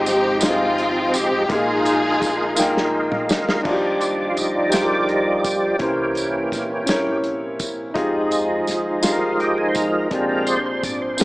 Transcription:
0.00 1.09 G#1 loud
0.00 0.38 G#2 medium
0.00 1.46 F3 medium
0.00 0.40 G#3 medium
0.00 1.46 G#3 medium
0.00 0.39 C4 medium
0.00 0.39 D#4 medium
0.00 0.42 D#4 medium
0.00 1.46 D#4 medium
0.00 0.43 F4 medium
0.00 0.44 G4 medium
0.00 1.46 G5 medium
0.06 0.41 G4 medium
0.06 snare soft
0.06 closed hi-hat soft
0.06 tambourine medium
0.40 1.16 G#3 medium
0.40 1.16 D#4 medium
0.40 1.17 F4 medium
0.40 snare loud
0.40 closed hi-hat medium
0.40 tambourine medium
0.44 1.47 C4 medium
0.44 1.16 F4 medium
0.44 0.50 G4 medium
0.51 1.21 G#4 medium
0.78 closed hi-hat soft
1.14 1.47 A1 medium
1.14 1.51 G4 medium
1.14 closed hi-hat medium
1.14 tambourine medium
1.49 3.25 A#1 loud
1.49 2.54 A#2 medium
1.49 1.57 D3 soft
1.49 3.62 G#3 medium
1.49 2.24 A#3 medium
1.49 3.62 A#3 medium
1.49 2.24 D#4 medium
1.49 2.90 D#4 medium
1.49 2.25 F4 medium
1.49 3.62 F4 medium
1.49 2.90 F4 medium
1.49 2.95 G#4 medium
1.49 kick loud
1.49 closed hi-hat medium
1.53 2.26 G#4 medium
1.58 3.65 D#4 medium
1.85 closed hi-hat medium
1.85 tambourine medium
2.22 kick medium
2.22 snare soft
2.22 closed hi-hat medium
2.22 tambourine medium
2.56 3.31 A#3 medium
2.56 3.32 D#4 medium
2.56 3.33 F4 medium
2.56 3.33 G5 medium
2.56 snare medium
2.56 tambourine medium
2.77 snare medium
3.12 mid tom medium
3.29 3.62 D2 medium
3.29 snare loud
3.29 tambourine medium
3.49 snare medium
3.63 4.33 D#2 medium
3.63 5.76 F3 soft
3.63 4.69 F3 medium
3.63 5.77 G3 soft
3.63 5.79 G3 medium
3.63 4.39 D4 medium
3.63 4.40 D#4 medium
3.63 4.40 F4 medium
3.63 3.73 F#4 medium
3.63 5.79 G4 medium
3.63 5.77 D5 soft
3.63 5.79 D5 medium
3.63 kick loud
3.63 crash medium
3.68 5.80 F4 medium
3.73 4.44 G4 medium
4.01 closed hi-hat soft
4.01 tambourine soft
4.30 4.37 F4 medium
4.35 5.77 D2 medium
4.35 4.73 D#4 medium
4.35 closed hi-hat medium
4.35 tambourine soft
4.70 5.47 D4 medium
4.70 5.47 D#4 medium
4.70 5.08 G4 medium
4.70 closed hi-hat medium
4.70 tambourine medium
4.74 5.48 F4 medium
4.74 4.81 G#4 soft
4.74 snare loud
4.82 5.52 A#4 medium
5.05 5.44 D#4 medium
5.05 closed hi-hat soft
5.40 7.18 G4 medium
5.44 kick medium
5.44 closed hi-hat medium
5.44 tambourine medium
5.79 6.48 C2 medium
5.79 6.84 C3 medium
5.79 7.95 C3 medium
5.79 6.84 E3 soft
5.79 6.84 A#3 soft
5.79 7.94 A#3 medium
5.79 6.54 C#4 medium
5.79 7.94 C#4 medium
5.79 6.85 C#4 soft
5.79 6.55 E4 medium
5.79 7.94 E4 medium
5.79 6.56 A#4 medium
5.79 6.56 C5 medium
5.79 kick loud
5.79 closed hi-hat medium
6.15 closed hi-hat soft
6.15 tambourine soft
6.52 7.92 A#1 medium
6.52 kick medium
6.52 snare soft
6.52 closed hi-hat medium
6.52 tambourine soft
6.86 7.62 C#4 medium
6.86 7.63 E4 medium
6.86 7.63 A#4 medium
6.86 7.64 C#5 medium
6.86 snare loud
6.86 closed hi-hat medium
6.86 tambourine medium
7.24 closed hi-hat soft
7.59 kick medium
7.59 closed hi-hat medium
7.59 tambourine medium
7.93 8.64 F2 loud
7.93 11.24 F3 medium
7.93 10.08 F3 soft
7.93 10.08 D#4 medium
7.93 8.70 D#4 medium
7.93 10.09 F4 medium
7.93 8.70 F4 medium
7.93 8.71 G4 medium
7.93 kick loud
7.93 closed hi-hat medium
7.97 10.09 G#3 soft
7.97 10.08 D#4 medium
7.97 8.71 G#4 medium
8.31 closed hi-hat soft
8.31 tambourine medium
8.67 10.08 D#2 medium
8.67 snare soft
8.67 closed hi-hat medium
8.67 tambourine soft
9.02 9.77 D#4 medium
9.02 9.78 F4 medium
9.02 9.41 F4 medium
9.02 9.78 G4 medium
9.02 9.11 G#4 medium
9.02 snare loud
9.02 closed hi-hat medium
9.02 tambourine medium
9.12 9.82 A#4 medium
9.40 9.58 G4 medium
9.40 closed hi-hat soft
9.58 9.68 G#4 medium
9.69 9.76 C5 medium
9.75 10.26 A#4 medium
9.75 kick medium
9.75 closed hi-hat medium
9.75 tambourine medium
10.10 10.79 A#1 medium
10.10 11.16 A#2 medium
10.10 10.59 F3 soft
10.10 10.59 G#3 soft
10.10 10.86 C4 medium
10.10 11.24 C4 medium
10.10 10.59 C4 soft
10.10 11.24 D4 medium
10.10 10.59 D4 soft
10.10 10.86 D4 medium
10.10 10.87 G4 medium
10.10 kick loud
10.10 closed hi-hat medium
10.15 10.88 G#4 medium
10.29 10.48 A#4 medium
10.47 10.65 C5 loud
10.47 closed hi-hat soft
10.47 tambourine medium
10.66 10.84 C5 medium
10.83 11.24 G#1 medium
10.83 11.02 D5 medium
10.83 kick medium
10.83 closed hi-hat medium
10.83 tambourine soft
11.02 11.20 C5 medium
11.17 11.24 C4 medium
11.17 11.24 D4 medium
11.17 11.24 G4 medium
11.17 11.24 A#4 medium
11.17 11.24 D5 medium
11.17 snare loud
11.17 closed hi-hat medium
11.17 tambourine medium

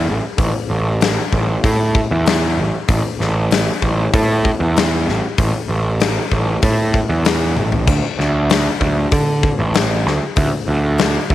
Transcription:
0.07 0.19 A1 medium
0.38 0.50 A1 medium
0.38 kick loud
0.38 open hi-hat medium
0.70 1.18 A1 medium
1.01 snare loud
1.01 open hi-hat medium
1.32 1.56 A1 medium
1.32 kick medium
1.64 2.00 A2 loud
1.64 kick loud
1.64 open hi-hat medium
1.95 kick loud
2.11 2.59 E2 medium
2.26 snare loud
2.26 open hi-hat medium
2.58 2.70 A1 medium
2.88 3.01 A1 loud
2.88 kick loud
2.88 open hi-hat medium
3.20 3.68 A1 medium
3.20 snare soft
3.51 snare loud
3.51 open hi-hat medium
3.82 4.06 A1 medium
3.82 kick medium
4.13 4.50 A2 loud
4.13 kick loud
4.13 open hi-hat medium
4.45 kick medium
4.60 5.09 E2 loud
4.76 snare loud
4.76 open hi-hat medium
5.07 5.19 A1 medium
5.07 snare soft
5.38 5.50 A1 medium
5.38 kick loud
5.38 open hi-hat medium
5.69 6.17 A1 medium
6.00 snare loud
6.00 open hi-hat medium
6.32 6.56 A1 medium
6.32 kick medium
6.62 6.99 A2 loud
6.62 kick loud
6.62 open hi-hat medium
6.94 kick medium
7.09 7.58 E2 loud
7.25 snare loud
7.25 open hi-hat medium
7.56 7.87 A1 medium
7.56 high tom medium
7.72 floor tom medium
7.87 8.00 D2 medium
7.87 kick loud
7.87 crash medium
8.19 8.67 D2 medium
8.19 snare soft
8.50 snare loud
8.50 open hi-hat medium
8.81 9.05 D2 medium
8.81 kick medium
9.11 9.48 D3 medium
9.11 kick loud
9.11 open hi-hat soft
9.43 kick loud
9.59 10.06 A1 loud
9.74 snare loud
9.74 open hi-hat medium
10.06 10.18 D2 medium
10.06 snare soft
10.36 10.49 D2 loud
10.36 kick loud
10.36 open hi-hat medium
10.68 11.16 D2 medium
10.98 snare loud
10.98 open hi-hat medium
11.30 11.35 D2 medium
11.30 kick medium

